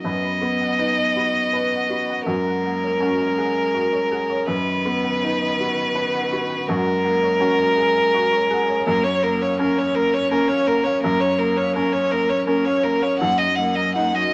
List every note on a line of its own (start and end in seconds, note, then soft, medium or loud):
0.04 2.23 F#2 soft
0.04 2.29 B3 medium
0.04 0.16 B4 medium
0.04 2.23 D#5 medium
0.23 0.35 B5 medium
0.41 1.01 B3 soft
0.41 0.53 B5 medium
0.61 0.72 F#5 medium
0.78 1.38 D#4 soft
0.78 0.90 B4 medium
0.98 1.09 D#5 medium
1.16 1.75 F#4 soft
1.16 1.28 B5 medium
1.53 2.13 B4 soft
1.53 1.65 B4 medium
1.73 1.84 F#5 medium
1.89 2.27 F#4 soft
1.89 2.02 B5 medium
2.10 2.21 F#5 medium
2.26 4.44 F#2 medium
2.26 4.48 G#3 medium
2.26 2.39 F#4 medium
2.26 4.47 A#4 medium
2.47 2.58 F#5 medium
2.63 3.23 A#3 soft
2.63 2.76 F#5 medium
2.84 2.94 C#5 medium
3.00 3.59 C#4 medium
3.00 3.12 F#4 medium
3.20 3.31 A#4 medium
3.38 3.96 G#4 soft
3.38 3.49 F#5 medium
3.73 3.86 F#4 medium
3.73 4.33 A#4 soft
3.93 4.04 C#5 medium
4.11 4.48 G#4 soft
4.11 4.23 F#5 medium
4.30 4.41 C#5 medium
4.46 6.64 F#2 medium
4.46 6.69 B4 medium
4.46 4.60 B4 medium
4.50 6.65 D#3 medium
4.67 4.78 B5 medium
4.85 5.44 B3 soft
4.85 4.97 B5 medium
5.04 5.15 F#5 medium
5.22 5.81 D#4 medium
5.22 5.33 B4 medium
5.41 5.52 D#5 medium
5.59 6.17 F#4 soft
5.59 5.70 B5 medium
5.95 6.53 B4 medium
5.95 6.06 B4 medium
6.14 6.24 F#5 medium
6.32 6.69 F#4 medium
6.32 6.43 B5 medium
6.50 6.61 F#5 medium
6.68 8.83 F#2 medium
6.68 8.83 G#3 medium
6.68 6.79 F#4 medium
6.68 8.85 A#4 medium
6.87 6.98 F#5 medium
7.05 7.63 A#3 medium
7.05 7.16 F#5 medium
7.23 7.34 C#5 medium
7.40 7.99 C#4 medium
7.40 7.52 F#4 loud
7.59 7.70 A#4 medium
7.77 8.36 G#4 medium
7.77 7.88 F#5 medium
8.14 8.25 F#4 medium
8.14 8.72 A#4 medium
8.32 8.43 C#5 medium
8.50 8.87 G#4 medium
8.50 8.61 F#5 medium
8.69 8.80 C#5 medium
8.86 11.00 F#2 medium
8.86 9.08 A#3 medium
8.86 9.05 A#4 medium
8.86 8.98 A#4 medium
9.04 9.25 C#4 medium
9.04 9.25 C#5 medium
9.04 9.16 A#5 medium
9.22 9.81 A#3 medium
9.22 9.44 A#3 medium
9.22 9.43 A#4 medium
9.22 9.34 A#5 medium
9.42 9.60 C#4 medium
9.42 9.59 C#5 medium
9.42 9.53 F5 medium
9.59 9.79 A#3 medium
9.59 10.18 C#4 medium
9.59 9.80 A#4 medium
9.59 9.71 A#4 medium
9.78 9.97 C#4 medium
9.78 9.96 C#5 medium
9.78 9.89 C#5 medium
9.95 10.16 A#3 medium
9.95 10.15 A#4 medium
9.95 10.54 A#4 medium
9.95 10.07 A#5 medium
10.14 10.30 C#4 medium
10.14 10.31 C#5 medium
10.31 10.52 A#3 medium
10.31 10.89 C#4 medium
10.31 10.50 A#4 medium
10.31 10.43 A#4 medium
10.48 10.68 C#4 medium
10.48 10.69 C#5 medium
10.48 10.61 F5 medium
10.67 10.88 A#3 medium
10.67 10.86 A#4 medium
10.67 11.26 A#4 medium
10.67 10.79 A#5 medium
10.84 11.03 C#4 medium
10.84 11.02 C#5 medium
10.84 10.97 F5 medium
11.03 13.17 F#2 medium
11.03 11.21 A#3 medium
11.03 11.22 A#4 medium
11.03 11.15 A#4 loud
11.20 11.39 C#4 medium
11.20 11.40 C#5 medium
11.20 11.33 A#5 medium
11.38 11.58 A#3 medium
11.38 11.98 A#3 medium
11.38 11.58 A#4 medium
11.38 11.51 A#5 medium
11.57 11.75 C#4 medium
11.57 11.75 C#5 medium
11.57 11.69 F5 medium
11.75 11.95 A#3 medium
11.75 12.34 C#4 medium
11.75 11.86 A#4 medium
11.75 11.94 A#4 medium
11.93 12.14 C#4 medium
11.93 12.13 C#5 medium
11.93 12.04 C#5 medium
12.11 12.33 A#3 medium
12.11 12.31 A#4 medium
12.11 12.70 A#4 medium
12.11 12.23 A#5 medium
12.29 12.48 C#4 medium
12.29 12.46 C#5 medium
12.47 12.68 A#3 medium
12.47 13.06 C#4 medium
12.47 12.66 A#4 medium
12.47 12.59 A#4 loud
12.65 12.87 C#4 medium
12.65 12.85 C#5 medium
12.65 12.78 F5 medium
12.83 13.04 A#3 medium
12.83 13.04 A#4 medium
12.83 13.21 A#4 medium
12.83 12.95 A#5 medium
13.02 13.21 C#4 medium
13.02 13.18 C#5 medium
13.02 13.14 F5 medium
13.19 14.34 F#2 medium
13.19 13.42 A#3 medium
13.19 13.32 D#4 loud
13.19 13.39 F#5 medium
13.38 13.61 F#3 medium
13.38 13.57 D#5 medium
13.38 13.51 D#5 medium
13.55 13.79 A#3 medium
13.55 14.19 A#3 medium
13.55 13.70 D#5 medium
13.55 13.77 F#5 medium
13.75 13.95 F#3 medium
13.75 13.88 A#4 medium
13.75 13.94 D#5 medium
13.95 14.16 A#3 soft
13.95 14.34 D#4 medium
13.95 14.07 D#4 loud
13.95 14.16 F#5 medium
14.14 14.34 F#3 medium
14.14 14.26 F#4 medium
14.14 14.34 D#5 medium